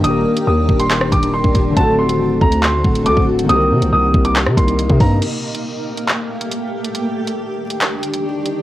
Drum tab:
CC |----------------|----------------|----------------|x---------------|
HH |x--x---xx-xx--x-|x--x---x---xx--x|x--x---xx-xxx-o-|x--x---x---xx--x|
CP |--------x-------|--------x-------|--------x-------|--------x-------|
SD |---------r------|----------------|---------r------|----------------|
BD |------o---o--oo-|o-----o---o--o--|------o---o--oo-|----------------|

CC |----------------|
HH |x--x---xx-xx--x-|
CP |--------x-------|
SD |----------------|
BD |----------------|